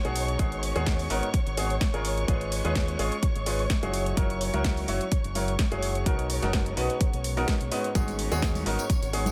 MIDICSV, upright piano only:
0, 0, Header, 1, 2, 480
1, 0, Start_track
1, 0, Key_signature, 5, "minor"
1, 0, Tempo, 472441
1, 398, Time_signature, 4, 2, 24, 8
1, 9465, End_track
2, 0, Start_track
2, 0, Title_t, "Upright piano"
2, 0, Program_c, 0, 0
2, 49, Note_on_c, 0, 47, 74
2, 49, Note_on_c, 0, 59, 68
2, 49, Note_on_c, 0, 63, 69
2, 49, Note_on_c, 0, 66, 69
2, 49, Note_on_c, 0, 68, 81
2, 372, Note_off_c, 0, 47, 0
2, 372, Note_off_c, 0, 59, 0
2, 372, Note_off_c, 0, 63, 0
2, 372, Note_off_c, 0, 66, 0
2, 372, Note_off_c, 0, 68, 0
2, 399, Note_on_c, 0, 44, 75
2, 399, Note_on_c, 0, 59, 68
2, 399, Note_on_c, 0, 63, 67
2, 399, Note_on_c, 0, 66, 70
2, 399, Note_on_c, 0, 68, 86
2, 738, Note_off_c, 0, 44, 0
2, 738, Note_off_c, 0, 59, 0
2, 738, Note_off_c, 0, 63, 0
2, 738, Note_off_c, 0, 66, 0
2, 738, Note_off_c, 0, 68, 0
2, 769, Note_on_c, 0, 44, 79
2, 769, Note_on_c, 0, 59, 75
2, 769, Note_on_c, 0, 63, 75
2, 769, Note_on_c, 0, 66, 75
2, 769, Note_on_c, 0, 68, 88
2, 1092, Note_off_c, 0, 44, 0
2, 1092, Note_off_c, 0, 59, 0
2, 1092, Note_off_c, 0, 63, 0
2, 1092, Note_off_c, 0, 66, 0
2, 1092, Note_off_c, 0, 68, 0
2, 1119, Note_on_c, 0, 44, 91
2, 1119, Note_on_c, 0, 59, 83
2, 1119, Note_on_c, 0, 63, 83
2, 1119, Note_on_c, 0, 66, 81
2, 1119, Note_on_c, 0, 70, 99
2, 1274, Note_off_c, 0, 44, 0
2, 1274, Note_off_c, 0, 59, 0
2, 1274, Note_off_c, 0, 63, 0
2, 1274, Note_off_c, 0, 66, 0
2, 1274, Note_off_c, 0, 70, 0
2, 1600, Note_on_c, 0, 44, 73
2, 1600, Note_on_c, 0, 59, 64
2, 1600, Note_on_c, 0, 63, 65
2, 1600, Note_on_c, 0, 66, 67
2, 1600, Note_on_c, 0, 68, 78
2, 1754, Note_off_c, 0, 44, 0
2, 1754, Note_off_c, 0, 59, 0
2, 1754, Note_off_c, 0, 63, 0
2, 1754, Note_off_c, 0, 66, 0
2, 1754, Note_off_c, 0, 68, 0
2, 1970, Note_on_c, 0, 56, 74
2, 1970, Note_on_c, 0, 61, 69
2, 1970, Note_on_c, 0, 65, 66
2, 1970, Note_on_c, 0, 68, 70
2, 1970, Note_on_c, 0, 70, 84
2, 2293, Note_off_c, 0, 56, 0
2, 2293, Note_off_c, 0, 61, 0
2, 2293, Note_off_c, 0, 65, 0
2, 2293, Note_off_c, 0, 68, 0
2, 2293, Note_off_c, 0, 70, 0
2, 2319, Note_on_c, 0, 65, 73
2, 2319, Note_on_c, 0, 68, 71
2, 2319, Note_on_c, 0, 71, 82
2, 2320, Note_on_c, 0, 56, 79
2, 2320, Note_on_c, 0, 61, 70
2, 2658, Note_off_c, 0, 56, 0
2, 2658, Note_off_c, 0, 61, 0
2, 2658, Note_off_c, 0, 65, 0
2, 2658, Note_off_c, 0, 68, 0
2, 2658, Note_off_c, 0, 71, 0
2, 2689, Note_on_c, 0, 56, 84
2, 2689, Note_on_c, 0, 61, 76
2, 2689, Note_on_c, 0, 71, 93
2, 2690, Note_on_c, 0, 65, 74
2, 2690, Note_on_c, 0, 68, 76
2, 3013, Note_off_c, 0, 56, 0
2, 3013, Note_off_c, 0, 61, 0
2, 3013, Note_off_c, 0, 65, 0
2, 3013, Note_off_c, 0, 68, 0
2, 3013, Note_off_c, 0, 71, 0
2, 3039, Note_on_c, 0, 56, 87
2, 3039, Note_on_c, 0, 61, 85
2, 3039, Note_on_c, 0, 65, 84
2, 3039, Note_on_c, 0, 68, 82
2, 3039, Note_on_c, 0, 73, 100
2, 3194, Note_off_c, 0, 56, 0
2, 3194, Note_off_c, 0, 61, 0
2, 3194, Note_off_c, 0, 65, 0
2, 3194, Note_off_c, 0, 68, 0
2, 3194, Note_off_c, 0, 73, 0
2, 3519, Note_on_c, 0, 56, 70
2, 3519, Note_on_c, 0, 61, 67
2, 3519, Note_on_c, 0, 65, 64
2, 3519, Note_on_c, 0, 68, 66
2, 3519, Note_on_c, 0, 71, 81
2, 3674, Note_off_c, 0, 56, 0
2, 3674, Note_off_c, 0, 61, 0
2, 3674, Note_off_c, 0, 65, 0
2, 3674, Note_off_c, 0, 68, 0
2, 3674, Note_off_c, 0, 71, 0
2, 3889, Note_on_c, 0, 54, 76
2, 3889, Note_on_c, 0, 61, 72
2, 3889, Note_on_c, 0, 64, 68
2, 3890, Note_on_c, 0, 66, 73
2, 3890, Note_on_c, 0, 68, 80
2, 4213, Note_off_c, 0, 54, 0
2, 4213, Note_off_c, 0, 61, 0
2, 4213, Note_off_c, 0, 64, 0
2, 4213, Note_off_c, 0, 66, 0
2, 4213, Note_off_c, 0, 68, 0
2, 4239, Note_on_c, 0, 54, 78
2, 4239, Note_on_c, 0, 61, 74
2, 4239, Note_on_c, 0, 70, 82
2, 4240, Note_on_c, 0, 64, 68
2, 4240, Note_on_c, 0, 66, 68
2, 4578, Note_off_c, 0, 54, 0
2, 4578, Note_off_c, 0, 61, 0
2, 4578, Note_off_c, 0, 64, 0
2, 4578, Note_off_c, 0, 66, 0
2, 4578, Note_off_c, 0, 70, 0
2, 4609, Note_on_c, 0, 54, 85
2, 4609, Note_on_c, 0, 61, 77
2, 4609, Note_on_c, 0, 64, 76
2, 4609, Note_on_c, 0, 66, 77
2, 4609, Note_on_c, 0, 70, 93
2, 4932, Note_off_c, 0, 54, 0
2, 4932, Note_off_c, 0, 64, 0
2, 4932, Note_off_c, 0, 66, 0
2, 4932, Note_off_c, 0, 70, 0
2, 4933, Note_off_c, 0, 61, 0
2, 4959, Note_on_c, 0, 54, 91
2, 4959, Note_on_c, 0, 61, 82
2, 4959, Note_on_c, 0, 64, 80
2, 4959, Note_on_c, 0, 66, 82
2, 4959, Note_on_c, 0, 73, 98
2, 5114, Note_off_c, 0, 54, 0
2, 5114, Note_off_c, 0, 61, 0
2, 5114, Note_off_c, 0, 64, 0
2, 5114, Note_off_c, 0, 66, 0
2, 5114, Note_off_c, 0, 73, 0
2, 5439, Note_on_c, 0, 54, 73
2, 5439, Note_on_c, 0, 61, 67
2, 5439, Note_on_c, 0, 64, 67
2, 5439, Note_on_c, 0, 66, 66
2, 5439, Note_on_c, 0, 70, 77
2, 5594, Note_off_c, 0, 54, 0
2, 5594, Note_off_c, 0, 61, 0
2, 5594, Note_off_c, 0, 64, 0
2, 5594, Note_off_c, 0, 66, 0
2, 5594, Note_off_c, 0, 70, 0
2, 5808, Note_on_c, 0, 54, 79
2, 5808, Note_on_c, 0, 61, 72
2, 5808, Note_on_c, 0, 64, 68
2, 5808, Note_on_c, 0, 66, 71
2, 5808, Note_on_c, 0, 68, 82
2, 6132, Note_off_c, 0, 54, 0
2, 6132, Note_off_c, 0, 61, 0
2, 6132, Note_off_c, 0, 64, 0
2, 6132, Note_off_c, 0, 66, 0
2, 6132, Note_off_c, 0, 68, 0
2, 6158, Note_on_c, 0, 47, 77
2, 6158, Note_on_c, 0, 59, 70
2, 6158, Note_on_c, 0, 63, 70
2, 6158, Note_on_c, 0, 66, 68
2, 6158, Note_on_c, 0, 70, 87
2, 6497, Note_off_c, 0, 47, 0
2, 6497, Note_off_c, 0, 59, 0
2, 6497, Note_off_c, 0, 63, 0
2, 6497, Note_off_c, 0, 66, 0
2, 6497, Note_off_c, 0, 70, 0
2, 6529, Note_on_c, 0, 47, 83
2, 6529, Note_on_c, 0, 59, 73
2, 6529, Note_on_c, 0, 63, 73
2, 6529, Note_on_c, 0, 66, 74
2, 6529, Note_on_c, 0, 70, 90
2, 6852, Note_off_c, 0, 47, 0
2, 6852, Note_off_c, 0, 59, 0
2, 6852, Note_off_c, 0, 63, 0
2, 6852, Note_off_c, 0, 66, 0
2, 6852, Note_off_c, 0, 70, 0
2, 6879, Note_on_c, 0, 47, 88
2, 6879, Note_on_c, 0, 59, 81
2, 6879, Note_on_c, 0, 63, 81
2, 6879, Note_on_c, 0, 66, 83
2, 6879, Note_on_c, 0, 71, 97
2, 7034, Note_off_c, 0, 47, 0
2, 7034, Note_off_c, 0, 59, 0
2, 7034, Note_off_c, 0, 63, 0
2, 7034, Note_off_c, 0, 66, 0
2, 7034, Note_off_c, 0, 71, 0
2, 7488, Note_on_c, 0, 63, 85
2, 7488, Note_on_c, 0, 66, 82
2, 7488, Note_on_c, 0, 70, 103
2, 7489, Note_on_c, 0, 47, 96
2, 7489, Note_on_c, 0, 59, 86
2, 7628, Note_off_c, 0, 47, 0
2, 7628, Note_off_c, 0, 59, 0
2, 7628, Note_off_c, 0, 63, 0
2, 7628, Note_off_c, 0, 66, 0
2, 7628, Note_off_c, 0, 70, 0
2, 7838, Note_on_c, 0, 63, 83
2, 7838, Note_on_c, 0, 66, 80
2, 7839, Note_on_c, 0, 44, 86
2, 7839, Note_on_c, 0, 59, 80
2, 7839, Note_on_c, 0, 71, 96
2, 7994, Note_off_c, 0, 44, 0
2, 7994, Note_off_c, 0, 59, 0
2, 7994, Note_off_c, 0, 63, 0
2, 7994, Note_off_c, 0, 66, 0
2, 7994, Note_off_c, 0, 71, 0
2, 8078, Note_on_c, 0, 44, 79
2, 8078, Note_on_c, 0, 59, 70
2, 8078, Note_on_c, 0, 66, 69
2, 8079, Note_on_c, 0, 63, 71
2, 8079, Note_on_c, 0, 68, 81
2, 8417, Note_off_c, 0, 44, 0
2, 8417, Note_off_c, 0, 59, 0
2, 8417, Note_off_c, 0, 63, 0
2, 8417, Note_off_c, 0, 66, 0
2, 8417, Note_off_c, 0, 68, 0
2, 8449, Note_on_c, 0, 44, 82
2, 8449, Note_on_c, 0, 59, 74
2, 8449, Note_on_c, 0, 63, 76
2, 8449, Note_on_c, 0, 66, 75
2, 8449, Note_on_c, 0, 68, 92
2, 8772, Note_off_c, 0, 44, 0
2, 8772, Note_off_c, 0, 59, 0
2, 8772, Note_off_c, 0, 63, 0
2, 8772, Note_off_c, 0, 66, 0
2, 8772, Note_off_c, 0, 68, 0
2, 8798, Note_on_c, 0, 66, 82
2, 8798, Note_on_c, 0, 70, 102
2, 8799, Note_on_c, 0, 44, 88
2, 8799, Note_on_c, 0, 59, 80
2, 8799, Note_on_c, 0, 63, 80
2, 8953, Note_off_c, 0, 70, 0
2, 8954, Note_off_c, 0, 44, 0
2, 8954, Note_off_c, 0, 59, 0
2, 8954, Note_off_c, 0, 63, 0
2, 8954, Note_off_c, 0, 66, 0
2, 9279, Note_on_c, 0, 44, 68
2, 9279, Note_on_c, 0, 59, 65
2, 9279, Note_on_c, 0, 63, 65
2, 9279, Note_on_c, 0, 66, 65
2, 9279, Note_on_c, 0, 68, 79
2, 9434, Note_off_c, 0, 44, 0
2, 9434, Note_off_c, 0, 59, 0
2, 9434, Note_off_c, 0, 63, 0
2, 9434, Note_off_c, 0, 66, 0
2, 9434, Note_off_c, 0, 68, 0
2, 9465, End_track
0, 0, End_of_file